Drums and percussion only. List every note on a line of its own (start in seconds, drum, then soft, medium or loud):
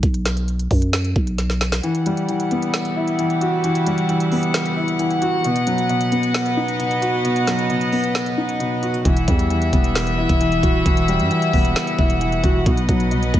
0.03 kick loud
0.03 closed hi-hat medium
0.14 closed hi-hat medium
0.26 snare medium
0.26 closed hi-hat medium
0.37 closed hi-hat medium
0.48 closed hi-hat medium
0.59 closed hi-hat medium
0.71 kick loud
0.71 open hi-hat medium
0.82 closed hi-hat medium
0.93 snare loud
0.93 closed hi-hat medium
1.05 closed hi-hat medium
1.16 kick medium
1.27 closed hi-hat medium
1.38 snare medium
1.38 closed hi-hat medium
1.50 snare medium
1.61 snare medium
1.61 closed hi-hat medium
1.72 snare loud
1.72 closed hi-hat medium
1.83 closed hi-hat medium
1.95 closed hi-hat medium
2.06 closed hi-hat medium
2.17 closed hi-hat medium
2.29 closed hi-hat medium
2.40 closed hi-hat medium
2.51 closed hi-hat medium
2.62 closed hi-hat medium
2.74 snare loud
2.74 closed hi-hat medium
2.85 closed hi-hat medium
3.08 closed hi-hat medium
3.19 closed hi-hat medium
3.30 closed hi-hat soft
3.41 closed hi-hat medium
3.64 closed hi-hat medium
3.75 closed hi-hat medium
3.87 closed hi-hat medium
3.98 closed hi-hat medium
4.09 closed hi-hat medium
4.20 closed hi-hat medium
4.32 open hi-hat medium
4.43 closed hi-hat medium
4.54 snare loud
4.54 closed hi-hat medium
4.65 closed hi-hat medium
4.88 closed hi-hat medium
4.99 closed hi-hat medium
5.11 closed hi-hat soft
5.22 closed hi-hat medium
5.44 closed hi-hat medium
5.56 closed hi-hat medium
5.67 closed hi-hat medium
5.78 closed hi-hat medium
5.89 closed hi-hat medium
6.01 closed hi-hat medium
6.12 closed hi-hat medium
6.23 closed hi-hat medium
6.34 snare loud
6.34 closed hi-hat medium
6.46 closed hi-hat medium
6.68 closed hi-hat medium
6.80 closed hi-hat medium
6.91 closed hi-hat medium
7.02 closed hi-hat medium
7.25 closed hi-hat medium
7.36 closed hi-hat medium
7.47 snare medium
7.47 closed hi-hat medium
7.59 closed hi-hat medium
7.70 closed hi-hat medium
7.81 closed hi-hat medium
7.92 open hi-hat medium
8.04 closed hi-hat medium
8.15 snare loud
8.15 closed hi-hat medium
8.26 closed hi-hat medium
8.49 closed hi-hat medium
8.60 closed hi-hat medium
8.83 closed hi-hat medium
8.94 closed hi-hat medium
9.05 kick loud
9.05 closed hi-hat medium
9.17 closed hi-hat medium
9.28 kick loud
9.28 closed hi-hat medium
9.39 closed hi-hat medium
9.50 closed hi-hat medium
9.62 closed hi-hat medium
9.73 kick loud
9.73 closed hi-hat medium
9.84 closed hi-hat medium
9.95 snare loud
9.95 closed hi-hat medium
10.07 closed hi-hat medium
10.29 kick medium
10.29 closed hi-hat medium
10.41 closed hi-hat medium
10.52 closed hi-hat medium
10.63 kick loud
10.63 closed hi-hat medium
10.86 kick loud
10.86 closed hi-hat medium
10.97 closed hi-hat medium
11.08 closed hi-hat medium
11.20 closed hi-hat medium
11.31 closed hi-hat medium
11.42 closed hi-hat medium
11.53 kick loud
11.53 open hi-hat medium
11.65 closed hi-hat medium
11.76 snare loud
11.76 closed hi-hat medium
11.87 closed hi-hat medium
11.99 kick medium
12.10 closed hi-hat medium
12.21 closed hi-hat medium
12.32 closed hi-hat soft
12.44 kick loud
12.44 closed hi-hat medium
12.66 kick loud
12.66 closed hi-hat medium
12.77 closed hi-hat medium
12.89 kick loud
12.89 closed hi-hat medium
13.00 closed hi-hat medium
13.11 closed hi-hat medium
13.23 closed hi-hat medium
13.34 kick loud
13.34 closed hi-hat medium